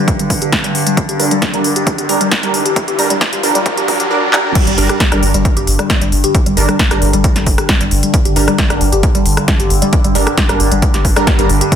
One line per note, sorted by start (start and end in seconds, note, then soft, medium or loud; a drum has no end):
0.00 4.11 G2 medium
0.00 4.11 D3 medium
0.00 riser medium
0.08 kick loud
0.08 closed hi-hat medium
0.19 0.26 G3 medium
0.19 closed hi-hat medium
0.30 kick medium
0.30 open hi-hat loud
0.42 0.51 G4 medium
0.42 closed hi-hat medium
0.52 kick loud
0.52 snare loud
0.52 closed hi-hat loud
0.64 0.68 G3 loud
0.64 closed hi-hat medium
0.75 open hi-hat medium
0.86 0.93 G3 medium
0.86 closed hi-hat medium
0.97 kick loud
0.97 closed hi-hat loud
1.09 1.18 G4 medium
1.09 closed hi-hat medium
1.20 1.37 G3 medium
1.20 1.37 D4 medium
1.20 1.37 A#4 medium
1.20 open hi-hat loud
1.31 1.35 G3 medium
1.31 closed hi-hat medium
1.42 kick loud
1.42 snare loud
1.42 closed hi-hat medium
1.54 1.71 G3 medium
1.54 1.60 G3 medium
1.54 1.71 D4 medium
1.54 1.71 A#4 medium
1.54 closed hi-hat medium
1.64 open hi-hat medium
1.76 1.85 G4 medium
1.76 closed hi-hat medium
1.87 kick loud
1.87 closed hi-hat loud
1.98 2.08 G4 medium
1.98 closed hi-hat medium
2.09 2.27 G3 medium
2.09 2.27 D4 medium
2.09 2.27 A#4 medium
2.09 open hi-hat loud
2.21 2.25 G3 loud
2.21 closed hi-hat medium
2.31 kick loud
2.31 snare loud
2.31 closed hi-hat medium
2.43 2.49 G3 medium
2.43 2.60 G3 medium
2.43 2.60 D4 medium
2.43 2.60 A#4 medium
2.43 closed hi-hat medium
2.54 open hi-hat loud
2.66 2.75 G4 medium
2.66 closed hi-hat medium
2.76 kick loud
2.76 closed hi-hat loud
2.88 2.97 G4 medium
2.88 closed hi-hat soft
2.99 3.16 G3 medium
2.99 3.16 D4 medium
2.99 3.16 A#4 medium
2.99 open hi-hat loud
3.10 3.14 G3 loud
3.10 closed hi-hat medium
3.21 kick loud
3.21 snare loud
3.21 closed hi-hat medium
3.33 3.42 G4 medium
3.33 closed hi-hat medium
3.43 3.61 G3 medium
3.43 3.61 D4 medium
3.43 3.61 A#4 loud
3.43 open hi-hat loud
3.55 3.59 G3 loud
3.55 closed hi-hat soft
3.66 3.83 G3 medium
3.66 3.83 D4 medium
3.66 3.83 A#4 medium
3.66 kick loud
3.66 closed hi-hat medium
3.77 3.87 G4 medium
3.77 closed hi-hat medium
3.88 4.06 G3 medium
3.88 4.06 D4 medium
3.88 4.06 A#4 medium
3.88 kick medium
3.88 open hi-hat loud
4.00 4.09 G4 medium
4.00 closed hi-hat medium
4.11 4.28 G3 medium
4.11 4.28 D4 medium
4.11 4.28 A#4 loud
4.33 4.51 G3 medium
4.33 4.51 D4 medium
4.33 4.51 A#4 loud
4.33 clap medium
4.55 11.76 G2 medium
4.55 11.76 D3 medium
4.55 kick loud
4.55 closed hi-hat loud
4.55 crash loud
4.67 4.77 G1 medium
4.67 4.73 G3 medium
4.67 closed hi-hat medium
4.78 4.89 G1 loud
4.78 4.95 G3 medium
4.78 4.95 D4 medium
4.78 4.95 A#4 medium
4.78 open hi-hat loud
4.89 4.99 G4 medium
4.89 cross-stick medium
4.89 closed hi-hat medium
5.00 kick loud
5.00 snare loud
5.00 closed hi-hat medium
5.12 5.22 G1 medium
5.12 5.29 G3 medium
5.12 5.16 G3 loud
5.12 5.29 D4 medium
5.12 5.29 A#4 medium
5.12 cross-stick medium
5.12 closed hi-hat medium
5.23 5.33 G1 loud
5.23 open hi-hat medium
5.34 5.45 G1 medium
5.34 5.41 G3 medium
5.34 closed hi-hat medium
5.45 kick loud
5.45 closed hi-hat loud
5.57 5.67 G1 medium
5.57 5.66 G4 medium
5.57 closed hi-hat medium
5.67 5.79 G1 medium
5.67 open hi-hat loud
5.79 5.83 G3 loud
5.79 cross-stick medium
5.79 closed hi-hat medium
5.90 kick loud
5.90 snare loud
5.90 closed hi-hat loud
6.01 6.11 G1 medium
6.01 6.08 G3 medium
6.01 closed hi-hat medium
6.12 6.24 G1 loud
6.12 open hi-hat medium
6.24 6.33 G4 medium
6.24 closed hi-hat medium
6.35 kick loud
6.35 closed hi-hat loud
6.46 6.56 G1 medium
6.46 6.50 G3 loud
6.46 closed hi-hat medium
6.57 6.68 G1 loud
6.57 6.75 G3 medium
6.57 6.75 D4 medium
6.57 6.75 A#4 medium
6.57 open hi-hat loud
6.69 6.75 G3 medium
6.69 cross-stick medium
6.69 closed hi-hat medium
6.79 kick loud
6.79 snare loud
6.79 closed hi-hat loud
6.91 7.01 G1 medium
6.91 7.08 G3 medium
6.91 7.08 D4 medium
6.91 7.00 G4 medium
6.91 7.08 A#4 medium
6.91 cross-stick medium
6.91 closed hi-hat medium
7.02 7.13 G1 loud
7.02 open hi-hat loud
7.13 7.24 G1 medium
7.13 7.17 G3 loud
7.13 closed hi-hat medium
7.24 kick loud
7.24 closed hi-hat loud
7.36 7.46 G1 medium
7.36 7.42 G3 medium
7.36 snare soft
7.36 closed hi-hat medium
7.47 7.58 G1 loud
7.47 kick medium
7.47 open hi-hat loud
7.58 7.68 G4 medium
7.58 cross-stick medium
7.58 closed hi-hat medium
7.69 kick loud
7.69 snare loud
7.69 closed hi-hat loud
7.80 7.91 G1 medium
7.80 7.84 G3 loud
7.80 closed hi-hat medium
7.91 8.03 G1 loud
7.91 open hi-hat loud
8.03 8.09 G3 medium
8.03 closed hi-hat medium
8.14 kick loud
8.14 closed hi-hat loud
8.25 8.35 G1 medium
8.25 8.35 G4 medium
8.25 closed hi-hat medium
8.36 8.48 G1 loud
8.36 8.54 G3 medium
8.36 8.54 D4 medium
8.36 8.54 A#4 medium
8.36 open hi-hat loud
8.48 8.51 G3 loud
8.48 cross-stick medium
8.48 closed hi-hat medium
8.58 kick loud
8.58 snare loud
8.58 closed hi-hat loud
8.70 8.80 G1 medium
8.70 8.76 G3 medium
8.70 8.87 G3 medium
8.70 8.87 D4 medium
8.70 8.87 A#4 medium
8.70 cross-stick medium
8.70 closed hi-hat medium
8.81 8.92 G1 loud
8.81 open hi-hat loud
8.92 9.03 G1 medium
8.92 9.02 G4 medium
8.92 closed hi-hat medium
9.03 kick loud
9.03 closed hi-hat loud
9.15 9.25 G1 medium
9.15 9.19 G3 loud
9.15 closed hi-hat medium
9.26 9.37 G1 loud
9.26 open hi-hat loud
9.37 9.44 G3 medium
9.37 cross-stick medium
9.37 closed hi-hat medium
9.48 kick loud
9.48 snare loud
9.48 closed hi-hat loud
9.60 9.70 G1 medium
9.60 9.69 G4 medium
9.60 closed hi-hat medium
9.70 9.82 G1 loud
9.70 open hi-hat medium
9.82 9.86 G3 loud
9.82 closed hi-hat medium
9.93 kick loud
9.93 closed hi-hat loud
10.04 10.15 G1 medium
10.04 10.11 G3 medium
10.04 closed hi-hat soft
10.15 10.27 G1 loud
10.15 10.33 G3 medium
10.15 10.33 D4 medium
10.15 10.33 A#4 medium
10.15 open hi-hat loud
10.27 10.36 G4 medium
10.27 cross-stick loud
10.27 closed hi-hat soft
10.38 kick loud
10.38 snare loud
10.38 closed hi-hat medium
10.49 10.59 G1 medium
10.49 10.66 G3 medium
10.49 10.53 G3 loud
10.49 10.66 D4 medium
10.49 10.66 A#4 medium
10.49 cross-stick medium
10.49 closed hi-hat medium
10.60 10.71 G1 loud
10.60 open hi-hat loud
10.72 10.82 G1 medium
10.72 10.78 G3 medium
10.72 closed hi-hat medium
10.82 kick loud
10.82 closed hi-hat loud
10.94 11.04 G1 medium
10.94 11.03 G4 medium
10.94 snare soft
10.94 closed hi-hat medium
11.05 11.16 G1 loud
11.05 kick medium
11.05 open hi-hat loud
11.16 11.36 G3 loud
11.16 11.20 G3 loud
11.16 11.36 D4 medium
11.16 11.36 A#4 loud
11.16 cross-stick medium
11.16 closed hi-hat medium
11.27 kick loud
11.27 snare loud
11.27 closed hi-hat medium
11.39 11.49 G1 medium
11.39 11.49 G3 medium
11.39 11.45 G3 medium
11.39 11.49 D4 medium
11.39 11.49 A#4 loud
11.39 closed hi-hat medium
11.49 11.61 G1 loud
11.49 open hi-hat medium
11.61 11.70 G4 medium
11.61 closed hi-hat medium
11.72 kick loud
11.72 closed hi-hat medium